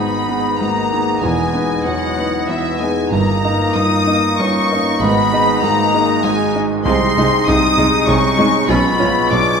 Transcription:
Already playing: G#1 G#2 B3 D#4 G#4 D#5 B5
0.28 B3 D#4 G#4
0.58 G#1 G#2 A#3 B3 D#4 A#5
0.92 B3 D#4 G#4
1.21 E1 E2 D#3 G#3 B3 E4 G#5
1.54 B3 D#4 B4
1.85 E1 E2 F#3 B3 D#4 F#5
2.18 B3 D#4 B4
2.47 E1 E2 E3 B3 D#4 E5
2.79 G#3 B3 D#4 B4 G#5
3.10 G1 G2 D#3 A#3 D#4 D#5 A#5
3.45 A#3 D#4 D#5
3.75 G1 G2 A#3 D#4 D#6
4.07 A#3 D#4 D#5
4.39 G1 G2 A#3 C#4 D#4 C#6
4.71 A#3 D#4 D#5
5.00 G#1 G#2 D#3 G#3 B3 B5
5.32 G#3 D#4 D#5
5.62 G#1 G#2 G#3 A#3 D#4 A#5
5.94 G#3 D#4 D#5
6.23 G#1 G#2 G#3 D#4 G#5
6.55 G#3 D#4 D#5
6.83 C2 C3 D#3 G#3 C4 D#4 D#5 C6
7.17 C2 C3 G#3 D#4 D#5
7.46 C2 C3 G#3 D#4 D#5 D#6
7.77 C2 C3 G#3 D#4 D#5
8.05 C2 C3 G#3 C#4 D#4 C#6
8.37 C2 C3 G#3 D#4 D#5
8.67 B1 B2 F3 G#3 B3 C#4 F4 C#5 B5
8.98 B1 B2 G#3 C#4 F4 C#5
9.30 B1 B2 C#4 D4 F4 D6

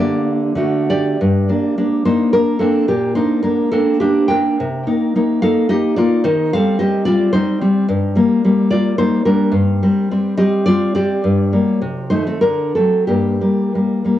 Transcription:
Already playing: D3 A#3
0.00 G4 D5
0.55 D3 A3 F#4
0.90 G4 D5
1.21 G2
1.49 A#3 D4
1.78 A#3 D4
2.05 A#3 D4 D#4 C5
2.33 A#3 D4 A#4
2.59 A#3 C4 D4 A4
2.88 A#2 A#3 G4
3.15 A#3 D4 D#4 C5
3.42 A#3 D4 A#4
3.71 A#3 C4 D4 A4
4.00 A#3 D4 G4
4.28 A#3 D4 A#4 G5
4.60 C3
4.87 A#3 D#4
5.15 A#3 D#4
5.42 A#3 D#4 A4 F5
5.69 A#3 D#4 G4 D#5
5.96 A#3 D#4 F4 D5
6.24 D#3 D#4 C5
6.53 G3 C4 A4 F5
6.79 G3 C4 G4 D#5
7.05 G3 C4 F4 D5
7.33 G3 C4 D#4 C5
7.61 G3 C4
7.89 G2
8.15 G3 A#3
8.44 G3 A#3
8.70 G3 A#3 F4 D5
8.98 G3 A#3 D#4 C5
9.25 G3 A#3 D4 A#4
9.52 G2
9.83 G3 C4
10.11 G3 C4
10.37 G3 C4 G4 D#5
10.66 G3 C4 F4 D5
10.95 G3 C4 G4 D5
11.24 G2
11.53 G3 A#3
11.82 C3
12.10 D#3 A3 D#4 C5
12.27 C4 A4
12.41 D3 D4 A#4
12.75 F#3 A3 C4 A4
13.07 G2 A#3 G4
13.41 G3 A#3
13.75 G3 A#3
14.05 G3 A#3

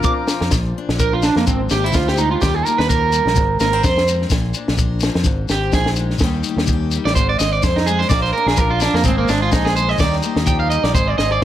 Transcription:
Already playing: A#2 D4 F4 A#4 F5 A#5 D6
0.03 F3 D6, kick, high tom, shekere
0.28 snare, shekere
0.41 F2, snare
0.51 A#1 A#2, kick, snare, shekere
0.78 D4
0.89 A#1, snare
0.99 C3 A#4, kick, shekere
1.13 F4
1.23 A#2 D4, snare, shekere
1.36 F2 A#3, snare
1.47 G#1 G#2 C4, kick, shekere
1.70 G#1 A#3 G4, snare, shekere
1.84 C4 E4
1.93 D2 F4, kick, snare, shekere
1.97 D#4
2.08 G4, snare
2.18 G#3 D#4, shekere
2.31 F4
2.41 D#2 D#3 G3 A#3 G4, kick, snare, shekere
2.46 D#4
2.55 G#4
2.65 A#3 A#4, shekere
2.78 D#2 B4, snare
2.89 F3 A#4, kick, shekere
3.13 G3, shekere
3.26 A#1, snare
3.35 G#1 G#2, kick, shekere
3.60 G#1 A#3 A#4, snare, shekere
3.73 C4
3.84 F2 G2 C5, kick, snare, shekere
3.98 snare
4.08 G#2, shekere
4.22 snare
4.30 A#1 A#2, kick, snare, shekere
4.54 D4, shekere
4.68 A#1, snare
4.78 A#4, kick, shekere
5.00 F3, snare, shekere
5.15 F2, snare
5.24 G#1 G#2, kick, shekere
5.49 G#1 C4 G4, snare, shekere
5.72 A#1 D#4 G#4, kick, snare, shekere
5.86 snare
5.96 G#3, shekere
6.10 snare
6.18 D#2, kick, snare, shekere
6.24 D#3 G3 A#3 D#4 G4
6.44 shekere
6.49 A#3
6.57 D#2, snare
6.67 kick, shekere
6.73 G4
6.91 shekere
6.95 G3
7.05 A1 D5, snare
7.15 G#1 G#2 C5, kick, shekere
7.29 D5
7.39 G#1 C4 D#5, snare, shekere
7.53 D5
7.63 F2 G#4 C5, kick, snare, shekere
7.76 D#4, snare
7.86 G#3 G#4, shekere
7.99 C5, snare
8.09 A#1 A#2 D5 F5 A#5 D6, kick, snare, shekere
8.22 C5, snare
8.33 A#4
8.38 D4
8.46 A#1 G#4, snare
8.57 F4 A#4, kick, shekere
8.70 F4
8.80 D4, snare, shekere
8.84 F3
8.94 F2 A#3, snare
9.04 G#1 G#2 C4 G#5 C6 D#6, kick, shekere
9.08 G#3 C4 D#4 G#4
9.18 A#3
9.28 G#1 C4 D4, snare, shekere
9.42 F4
9.52 A#1 D#4 G#4, kick, snare, shekere
9.65 G#4, snare
9.76 G#3 C5, shekere
9.89 D#5, snare
9.98 D#2 D#3 G3 D5, kick, snare, shekere
10.02 A#3 D#4 G4 G5 A#5
10.13 snare
10.23 A#3, shekere
10.36 D#2, snare
10.46 F3 G5, kick, shekere
10.60 F5
10.70 G3 D#5, shekere
10.83 A#1 D5, snare
10.94 G#1 G#2 C5 G#5 C6, kick, shekere
11.08 D5
11.18 G#1 C4 D#5, snare
11.32 D5

